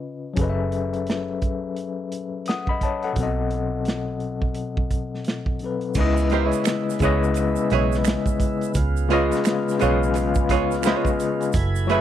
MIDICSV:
0, 0, Header, 1, 7, 480
1, 0, Start_track
1, 0, Key_signature, 4, "minor"
1, 0, Tempo, 697674
1, 256, Time_signature, 4, 2, 24, 8
1, 8262, End_track
2, 0, Start_track
2, 0, Title_t, "Tine electric piano"
2, 0, Program_c, 0, 4
2, 0, Control_c, 0, 64, 127
2, 0, Note_on_c, 0, 49, 61
2, 0, Note_on_c, 0, 61, 56
2, 0, Note_on_c, 0, 65, 54
2, 0, Note_on_c, 0, 71, 59
2, 0, Note_on_c, 0, 75, 66
2, 216, Note_off_c, 0, 49, 0
2, 225, Note_off_c, 0, 61, 0
2, 231, Note_on_c, 0, 54, 63
2, 233, Note_off_c, 0, 65, 0
2, 242, Note_off_c, 0, 71, 0
2, 246, Note_on_c, 0, 61, 55
2, 249, Note_off_c, 0, 75, 0
2, 256, Note_on_c, 0, 68, 51
2, 264, Control_c, 0, 64, 0
2, 268, Note_on_c, 0, 69, 54
2, 283, Note_on_c, 0, 71, 62
2, 297, Note_on_c, 0, 75, 50
2, 332, Note_off_c, 0, 75, 0
2, 340, Note_on_c, 0, 76, 65
2, 372, Control_c, 0, 64, 127
2, 1432, Note_off_c, 0, 68, 0
2, 1438, Note_off_c, 0, 69, 0
2, 1446, Note_off_c, 0, 71, 0
2, 1475, Note_off_c, 0, 76, 0
2, 1705, Note_on_c, 0, 87, 48
2, 1710, Note_on_c, 0, 78, 44
2, 1841, Note_off_c, 0, 87, 0
2, 1844, Note_off_c, 0, 78, 0
2, 1852, Note_on_c, 0, 83, 56
2, 1860, Note_on_c, 0, 75, 49
2, 1935, Note_off_c, 0, 83, 0
2, 1940, Note_off_c, 0, 75, 0
2, 1947, Note_on_c, 0, 81, 52
2, 1956, Note_on_c, 0, 73, 47
2, 2082, Note_off_c, 0, 81, 0
2, 2087, Note_off_c, 0, 73, 0
2, 2092, Note_on_c, 0, 78, 51
2, 2099, Note_on_c, 0, 69, 45
2, 2136, Note_off_c, 0, 54, 0
2, 2143, Note_off_c, 0, 61, 0
2, 2152, Note_on_c, 0, 47, 62
2, 2171, Note_on_c, 0, 54, 57
2, 2184, Control_c, 0, 64, 0
2, 2185, Note_on_c, 0, 60, 51
2, 2196, Note_off_c, 0, 69, 0
2, 2204, Note_on_c, 0, 69, 59
2, 2221, Note_on_c, 0, 75, 64
2, 2299, Control_c, 0, 64, 127
2, 2316, Note_off_c, 0, 78, 0
2, 3817, Note_off_c, 0, 47, 0
2, 3826, Note_off_c, 0, 54, 0
2, 3833, Note_off_c, 0, 60, 0
2, 3842, Note_off_c, 0, 69, 0
2, 3851, Note_off_c, 0, 75, 0
2, 3857, Note_on_c, 0, 47, 40
2, 3866, Note_on_c, 0, 54, 38
2, 3876, Note_on_c, 0, 60, 39
2, 3883, Note_on_c, 0, 69, 44
2, 3892, Note_on_c, 0, 71, 47
2, 4096, Note_off_c, 0, 47, 0
2, 4098, Note_on_c, 0, 49, 71
2, 4101, Note_off_c, 0, 54, 0
2, 4106, Note_off_c, 0, 60, 0
2, 4106, Control_c, 0, 64, 0
2, 4106, Note_on_c, 0, 56, 75
2, 4109, Note_off_c, 0, 69, 0
2, 4114, Note_off_c, 0, 71, 0
2, 4114, Note_on_c, 0, 63, 52
2, 4121, Note_on_c, 0, 71, 64
2, 4132, Note_on_c, 0, 75, 88
2, 4157, Note_on_c, 0, 64, 70
2, 4160, Note_off_c, 0, 63, 0
2, 4222, Control_c, 0, 64, 127
2, 4455, Note_off_c, 0, 49, 0
2, 4459, Note_off_c, 0, 56, 0
2, 4467, Note_off_c, 0, 71, 0
2, 4472, Note_off_c, 0, 75, 0
2, 4485, Note_off_c, 0, 64, 0
2, 4816, Note_on_c, 0, 49, 79
2, 4824, Note_on_c, 0, 56, 73
2, 4832, Note_on_c, 0, 64, 69
2, 4842, Note_on_c, 0, 71, 77
2, 4850, Note_on_c, 0, 75, 90
2, 5001, Note_off_c, 0, 49, 0
2, 5005, Note_off_c, 0, 56, 0
2, 5009, Note_off_c, 0, 64, 0
2, 5014, Note_off_c, 0, 71, 0
2, 5018, Note_off_c, 0, 75, 0
2, 6025, Control_c, 0, 64, 0
2, 6152, Control_c, 0, 64, 127
2, 6249, Note_on_c, 0, 49, 97
2, 6258, Note_on_c, 0, 56, 85
2, 6268, Note_on_c, 0, 65, 84
2, 6274, Note_on_c, 0, 71, 84
2, 6283, Note_on_c, 0, 75, 93
2, 6611, Note_off_c, 0, 49, 0
2, 6615, Note_off_c, 0, 56, 0
2, 6620, Note_off_c, 0, 65, 0
2, 6623, Note_off_c, 0, 71, 0
2, 6628, Note_off_c, 0, 75, 0
2, 6727, Note_on_c, 0, 49, 73
2, 6737, Note_on_c, 0, 56, 66
2, 6741, Note_on_c, 0, 65, 71
2, 6752, Note_on_c, 0, 71, 71
2, 6761, Note_on_c, 0, 77, 89
2, 6916, Note_off_c, 0, 49, 0
2, 6921, Note_off_c, 0, 56, 0
2, 6923, Note_off_c, 0, 65, 0
2, 6928, Note_off_c, 0, 71, 0
2, 6933, Note_off_c, 0, 77, 0
2, 7443, Note_on_c, 0, 49, 67
2, 7454, Note_on_c, 0, 56, 59
2, 7460, Note_on_c, 0, 65, 67
2, 7469, Note_on_c, 0, 71, 69
2, 7478, Note_on_c, 0, 75, 78
2, 7929, Note_off_c, 0, 49, 0
2, 7935, Note_off_c, 0, 56, 0
2, 7938, Note_off_c, 0, 65, 0
2, 7943, Note_off_c, 0, 71, 0
2, 7944, Control_c, 0, 64, 0
2, 7947, Note_off_c, 0, 75, 0
2, 8071, Control_c, 0, 64, 127
2, 8166, Note_on_c, 0, 54, 86
2, 8173, Note_on_c, 0, 66, 76
2, 8181, Note_on_c, 0, 68, 71
2, 8186, Note_on_c, 0, 57, 75
2, 8193, Note_on_c, 0, 71, 70
2, 8200, Note_on_c, 0, 76, 88
2, 8262, Note_off_c, 0, 54, 0
2, 8262, Note_off_c, 0, 57, 0
2, 8262, Note_off_c, 0, 66, 0
2, 8262, Note_off_c, 0, 68, 0
2, 8262, Note_off_c, 0, 71, 0
2, 8262, Note_off_c, 0, 76, 0
2, 8262, End_track
3, 0, Start_track
3, 0, Title_t, "Hollow-body jazz guitar"
3, 0, Program_c, 1, 26
3, 4346, Note_on_c, 1, 58, 70
3, 4350, Note_on_c, 1, 63, 71
3, 4353, Note_on_c, 1, 67, 72
3, 4354, Note_on_c, 1, 72, 71
3, 4435, Note_off_c, 1, 58, 0
3, 4435, Note_on_c, 1, 59, 70
3, 4439, Note_off_c, 1, 63, 0
3, 4439, Note_on_c, 1, 64, 71
3, 4443, Note_off_c, 1, 67, 0
3, 4443, Note_on_c, 1, 68, 72
3, 4444, Note_off_c, 1, 72, 0
3, 4444, Note_on_c, 1, 73, 71
3, 4566, Note_off_c, 1, 59, 0
3, 4568, Note_off_c, 1, 64, 0
3, 4570, Note_off_c, 1, 68, 0
3, 4570, Note_off_c, 1, 73, 0
3, 4831, Note_on_c, 1, 59, 55
3, 4832, Note_on_c, 1, 64, 65
3, 4835, Note_on_c, 1, 68, 69
3, 4838, Note_on_c, 1, 73, 67
3, 4968, Note_off_c, 1, 59, 0
3, 4968, Note_off_c, 1, 64, 0
3, 4969, Note_off_c, 1, 68, 0
3, 4971, Note_off_c, 1, 73, 0
3, 5309, Note_on_c, 1, 59, 70
3, 5314, Note_on_c, 1, 64, 84
3, 5317, Note_on_c, 1, 68, 88
3, 5319, Note_on_c, 1, 73, 82
3, 5473, Note_off_c, 1, 59, 0
3, 5475, Note_off_c, 1, 64, 0
3, 5477, Note_off_c, 1, 68, 0
3, 5478, Note_off_c, 1, 73, 0
3, 6263, Note_on_c, 1, 59, 86
3, 6267, Note_on_c, 1, 65, 94
3, 6270, Note_on_c, 1, 73, 80
3, 6272, Note_on_c, 1, 68, 83
3, 6485, Note_off_c, 1, 59, 0
3, 6487, Note_off_c, 1, 65, 0
3, 6488, Note_off_c, 1, 73, 0
3, 6489, Note_off_c, 1, 68, 0
3, 6746, Note_on_c, 1, 59, 66
3, 6750, Note_on_c, 1, 65, 68
3, 6753, Note_on_c, 1, 68, 71
3, 6753, Note_on_c, 1, 73, 75
3, 6885, Note_off_c, 1, 59, 0
3, 6887, Note_off_c, 1, 65, 0
3, 6888, Note_off_c, 1, 68, 0
3, 6889, Note_off_c, 1, 73, 0
3, 7225, Note_on_c, 1, 59, 75
3, 7228, Note_on_c, 1, 65, 92
3, 7232, Note_on_c, 1, 68, 79
3, 7234, Note_on_c, 1, 73, 87
3, 7391, Note_off_c, 1, 59, 0
3, 7392, Note_off_c, 1, 65, 0
3, 7394, Note_off_c, 1, 68, 0
3, 7395, Note_off_c, 1, 73, 0
3, 7466, Note_on_c, 1, 59, 74
3, 7471, Note_on_c, 1, 65, 75
3, 7471, Note_on_c, 1, 68, 85
3, 7475, Note_on_c, 1, 73, 96
3, 7632, Note_off_c, 1, 59, 0
3, 7634, Note_off_c, 1, 65, 0
3, 7634, Note_off_c, 1, 68, 0
3, 7636, Note_off_c, 1, 73, 0
3, 8185, Note_on_c, 1, 57, 85
3, 8187, Note_on_c, 1, 64, 80
3, 8190, Note_on_c, 1, 68, 79
3, 8191, Note_on_c, 1, 71, 93
3, 8262, Note_off_c, 1, 57, 0
3, 8262, Note_off_c, 1, 64, 0
3, 8262, Note_off_c, 1, 68, 0
3, 8262, Note_off_c, 1, 71, 0
3, 8262, End_track
4, 0, Start_track
4, 0, Title_t, "Tonewheel organ"
4, 0, Program_c, 2, 16
4, 4106, Note_on_c, 2, 56, 64
4, 4106, Note_on_c, 2, 59, 58
4, 4107, Note_on_c, 2, 49, 65
4, 4107, Note_on_c, 2, 64, 72
4, 6002, Note_off_c, 2, 49, 0
4, 6002, Note_off_c, 2, 64, 0
4, 6027, Note_on_c, 2, 49, 68
4, 6030, Note_on_c, 2, 65, 78
4, 7913, Note_off_c, 2, 56, 0
4, 7913, Note_off_c, 2, 59, 0
4, 7922, Note_off_c, 2, 49, 0
4, 7924, Note_off_c, 2, 65, 0
4, 7939, Note_on_c, 2, 54, 73
4, 7940, Note_on_c, 2, 64, 65
4, 7941, Note_on_c, 2, 57, 64
4, 7941, Note_on_c, 2, 80, 71
4, 7943, Note_on_c, 2, 71, 81
4, 8262, Note_off_c, 2, 54, 0
4, 8262, Note_off_c, 2, 57, 0
4, 8262, Note_off_c, 2, 64, 0
4, 8262, Note_off_c, 2, 71, 0
4, 8262, Note_off_c, 2, 80, 0
4, 8262, End_track
5, 0, Start_track
5, 0, Title_t, "Fingered electric bass"
5, 0, Program_c, 3, 33
5, 263, Note_on_c, 3, 30, 70
5, 2152, Note_off_c, 3, 30, 0
5, 2183, Note_on_c, 3, 35, 67
5, 4072, Note_off_c, 3, 35, 0
5, 4101, Note_on_c, 3, 37, 88
5, 4476, Note_off_c, 3, 37, 0
5, 4826, Note_on_c, 3, 37, 79
5, 5198, Note_off_c, 3, 37, 0
5, 5309, Note_on_c, 3, 35, 82
5, 5608, Note_off_c, 3, 35, 0
5, 6026, Note_on_c, 3, 37, 106
5, 6399, Note_off_c, 3, 37, 0
5, 6757, Note_on_c, 3, 35, 81
5, 7228, Note_off_c, 3, 35, 0
5, 7228, Note_on_c, 3, 37, 88
5, 7527, Note_off_c, 3, 37, 0
5, 7948, Note_on_c, 3, 30, 90
5, 8262, Note_off_c, 3, 30, 0
5, 8262, End_track
6, 0, Start_track
6, 0, Title_t, "Muted hollow-body jazz guitar strokes"
6, 5067, Note_on_c, 9, 29, 42
6, 5136, Note_off_c, 9, 29, 0
6, 6984, Note_on_c, 9, 29, 48
6, 7053, Note_off_c, 9, 29, 0
6, 8262, End_track
7, 0, Start_track
7, 0, Title_t, "Drums"
7, 251, Note_on_c, 9, 42, 69
7, 256, Note_on_c, 9, 36, 95
7, 320, Note_off_c, 9, 42, 0
7, 324, Note_off_c, 9, 36, 0
7, 496, Note_on_c, 9, 42, 48
7, 565, Note_off_c, 9, 42, 0
7, 644, Note_on_c, 9, 42, 40
7, 712, Note_off_c, 9, 42, 0
7, 734, Note_on_c, 9, 42, 56
7, 754, Note_on_c, 9, 38, 86
7, 803, Note_off_c, 9, 42, 0
7, 823, Note_off_c, 9, 38, 0
7, 974, Note_on_c, 9, 42, 46
7, 977, Note_on_c, 9, 36, 75
7, 1043, Note_off_c, 9, 42, 0
7, 1046, Note_off_c, 9, 36, 0
7, 1214, Note_on_c, 9, 42, 58
7, 1283, Note_off_c, 9, 42, 0
7, 1457, Note_on_c, 9, 42, 57
7, 1526, Note_off_c, 9, 42, 0
7, 1690, Note_on_c, 9, 42, 66
7, 1715, Note_on_c, 9, 38, 82
7, 1759, Note_off_c, 9, 42, 0
7, 1784, Note_off_c, 9, 38, 0
7, 1837, Note_on_c, 9, 36, 79
7, 1906, Note_off_c, 9, 36, 0
7, 1934, Note_on_c, 9, 36, 70
7, 1935, Note_on_c, 9, 42, 51
7, 2003, Note_off_c, 9, 36, 0
7, 2004, Note_off_c, 9, 42, 0
7, 2081, Note_on_c, 9, 42, 34
7, 2150, Note_off_c, 9, 42, 0
7, 2173, Note_on_c, 9, 42, 72
7, 2176, Note_on_c, 9, 36, 90
7, 2242, Note_off_c, 9, 42, 0
7, 2245, Note_off_c, 9, 36, 0
7, 2412, Note_on_c, 9, 42, 46
7, 2481, Note_off_c, 9, 42, 0
7, 2650, Note_on_c, 9, 42, 62
7, 2671, Note_on_c, 9, 38, 84
7, 2719, Note_off_c, 9, 42, 0
7, 2740, Note_off_c, 9, 38, 0
7, 2890, Note_on_c, 9, 42, 46
7, 2959, Note_off_c, 9, 42, 0
7, 3039, Note_on_c, 9, 36, 70
7, 3107, Note_off_c, 9, 36, 0
7, 3127, Note_on_c, 9, 42, 63
7, 3196, Note_off_c, 9, 42, 0
7, 3283, Note_on_c, 9, 36, 80
7, 3351, Note_off_c, 9, 36, 0
7, 3375, Note_on_c, 9, 36, 67
7, 3375, Note_on_c, 9, 42, 59
7, 3444, Note_off_c, 9, 36, 0
7, 3444, Note_off_c, 9, 42, 0
7, 3540, Note_on_c, 9, 38, 26
7, 3608, Note_on_c, 9, 42, 63
7, 3609, Note_off_c, 9, 38, 0
7, 3633, Note_on_c, 9, 38, 83
7, 3677, Note_off_c, 9, 42, 0
7, 3702, Note_off_c, 9, 38, 0
7, 3757, Note_on_c, 9, 36, 80
7, 3826, Note_off_c, 9, 36, 0
7, 3848, Note_on_c, 9, 42, 49
7, 3917, Note_off_c, 9, 42, 0
7, 3998, Note_on_c, 9, 42, 36
7, 4066, Note_off_c, 9, 42, 0
7, 4087, Note_on_c, 9, 82, 45
7, 4092, Note_on_c, 9, 49, 96
7, 4096, Note_on_c, 9, 36, 109
7, 4156, Note_off_c, 9, 82, 0
7, 4161, Note_off_c, 9, 49, 0
7, 4164, Note_off_c, 9, 36, 0
7, 4246, Note_on_c, 9, 82, 43
7, 4315, Note_off_c, 9, 82, 0
7, 4333, Note_on_c, 9, 42, 56
7, 4401, Note_off_c, 9, 42, 0
7, 4482, Note_on_c, 9, 42, 47
7, 4489, Note_on_c, 9, 82, 49
7, 4551, Note_off_c, 9, 42, 0
7, 4558, Note_off_c, 9, 82, 0
7, 4569, Note_on_c, 9, 42, 69
7, 4578, Note_on_c, 9, 26, 67
7, 4578, Note_on_c, 9, 82, 68
7, 4589, Note_on_c, 9, 38, 107
7, 4638, Note_off_c, 9, 42, 0
7, 4647, Note_off_c, 9, 26, 0
7, 4647, Note_off_c, 9, 82, 0
7, 4658, Note_off_c, 9, 38, 0
7, 4747, Note_on_c, 9, 82, 50
7, 4748, Note_on_c, 9, 38, 35
7, 4810, Note_on_c, 9, 42, 63
7, 4815, Note_off_c, 9, 82, 0
7, 4816, Note_off_c, 9, 38, 0
7, 4818, Note_on_c, 9, 36, 84
7, 4826, Note_on_c, 9, 82, 49
7, 4879, Note_off_c, 9, 42, 0
7, 4887, Note_off_c, 9, 36, 0
7, 4895, Note_off_c, 9, 82, 0
7, 4977, Note_on_c, 9, 82, 37
7, 5046, Note_off_c, 9, 82, 0
7, 5052, Note_on_c, 9, 42, 70
7, 5062, Note_on_c, 9, 82, 66
7, 5121, Note_off_c, 9, 42, 0
7, 5130, Note_off_c, 9, 82, 0
7, 5200, Note_on_c, 9, 82, 48
7, 5269, Note_off_c, 9, 82, 0
7, 5299, Note_on_c, 9, 42, 66
7, 5368, Note_off_c, 9, 42, 0
7, 5450, Note_on_c, 9, 82, 48
7, 5462, Note_on_c, 9, 38, 28
7, 5519, Note_off_c, 9, 82, 0
7, 5531, Note_off_c, 9, 38, 0
7, 5532, Note_on_c, 9, 42, 75
7, 5536, Note_on_c, 9, 26, 59
7, 5536, Note_on_c, 9, 82, 63
7, 5557, Note_on_c, 9, 38, 100
7, 5601, Note_off_c, 9, 42, 0
7, 5605, Note_off_c, 9, 26, 0
7, 5605, Note_off_c, 9, 82, 0
7, 5626, Note_off_c, 9, 38, 0
7, 5681, Note_on_c, 9, 36, 91
7, 5686, Note_on_c, 9, 82, 48
7, 5749, Note_off_c, 9, 36, 0
7, 5755, Note_off_c, 9, 82, 0
7, 5777, Note_on_c, 9, 36, 94
7, 5779, Note_on_c, 9, 42, 58
7, 5784, Note_on_c, 9, 82, 43
7, 5846, Note_off_c, 9, 36, 0
7, 5847, Note_off_c, 9, 42, 0
7, 5853, Note_off_c, 9, 82, 0
7, 5925, Note_on_c, 9, 42, 37
7, 5936, Note_on_c, 9, 82, 46
7, 5994, Note_off_c, 9, 42, 0
7, 6005, Note_off_c, 9, 82, 0
7, 6014, Note_on_c, 9, 82, 56
7, 6019, Note_on_c, 9, 42, 84
7, 6020, Note_on_c, 9, 36, 102
7, 6083, Note_off_c, 9, 82, 0
7, 6088, Note_off_c, 9, 42, 0
7, 6089, Note_off_c, 9, 36, 0
7, 6169, Note_on_c, 9, 82, 41
7, 6238, Note_off_c, 9, 82, 0
7, 6262, Note_on_c, 9, 42, 54
7, 6330, Note_off_c, 9, 42, 0
7, 6409, Note_on_c, 9, 42, 48
7, 6413, Note_on_c, 9, 82, 53
7, 6436, Note_on_c, 9, 38, 33
7, 6477, Note_off_c, 9, 42, 0
7, 6482, Note_off_c, 9, 82, 0
7, 6493, Note_on_c, 9, 42, 73
7, 6502, Note_on_c, 9, 26, 69
7, 6502, Note_on_c, 9, 82, 70
7, 6505, Note_off_c, 9, 38, 0
7, 6514, Note_on_c, 9, 38, 102
7, 6562, Note_off_c, 9, 42, 0
7, 6571, Note_off_c, 9, 26, 0
7, 6571, Note_off_c, 9, 82, 0
7, 6583, Note_off_c, 9, 38, 0
7, 6664, Note_on_c, 9, 82, 47
7, 6676, Note_on_c, 9, 38, 33
7, 6733, Note_off_c, 9, 82, 0
7, 6738, Note_on_c, 9, 42, 59
7, 6745, Note_off_c, 9, 38, 0
7, 6750, Note_on_c, 9, 82, 47
7, 6807, Note_off_c, 9, 42, 0
7, 6819, Note_off_c, 9, 82, 0
7, 6901, Note_on_c, 9, 82, 37
7, 6970, Note_off_c, 9, 82, 0
7, 6976, Note_on_c, 9, 42, 71
7, 6986, Note_on_c, 9, 82, 61
7, 7045, Note_off_c, 9, 42, 0
7, 7055, Note_off_c, 9, 82, 0
7, 7119, Note_on_c, 9, 82, 46
7, 7126, Note_on_c, 9, 36, 91
7, 7188, Note_off_c, 9, 82, 0
7, 7195, Note_off_c, 9, 36, 0
7, 7219, Note_on_c, 9, 36, 86
7, 7221, Note_on_c, 9, 42, 68
7, 7287, Note_off_c, 9, 36, 0
7, 7290, Note_off_c, 9, 42, 0
7, 7372, Note_on_c, 9, 82, 46
7, 7383, Note_on_c, 9, 38, 26
7, 7441, Note_off_c, 9, 82, 0
7, 7452, Note_off_c, 9, 38, 0
7, 7452, Note_on_c, 9, 26, 58
7, 7452, Note_on_c, 9, 82, 62
7, 7454, Note_on_c, 9, 42, 73
7, 7479, Note_on_c, 9, 38, 106
7, 7521, Note_off_c, 9, 26, 0
7, 7521, Note_off_c, 9, 82, 0
7, 7523, Note_off_c, 9, 42, 0
7, 7548, Note_off_c, 9, 38, 0
7, 7601, Note_on_c, 9, 36, 100
7, 7611, Note_on_c, 9, 82, 49
7, 7670, Note_off_c, 9, 36, 0
7, 7680, Note_off_c, 9, 82, 0
7, 7704, Note_on_c, 9, 42, 61
7, 7706, Note_on_c, 9, 82, 51
7, 7773, Note_off_c, 9, 42, 0
7, 7775, Note_off_c, 9, 82, 0
7, 7848, Note_on_c, 9, 42, 39
7, 7858, Note_on_c, 9, 82, 47
7, 7916, Note_off_c, 9, 42, 0
7, 7927, Note_off_c, 9, 82, 0
7, 7929, Note_on_c, 9, 82, 55
7, 7937, Note_on_c, 9, 42, 82
7, 7940, Note_on_c, 9, 36, 120
7, 7997, Note_off_c, 9, 82, 0
7, 8006, Note_off_c, 9, 42, 0
7, 8009, Note_off_c, 9, 36, 0
7, 8088, Note_on_c, 9, 82, 48
7, 8157, Note_off_c, 9, 82, 0
7, 8183, Note_on_c, 9, 42, 54
7, 8251, Note_off_c, 9, 42, 0
7, 8262, End_track
0, 0, End_of_file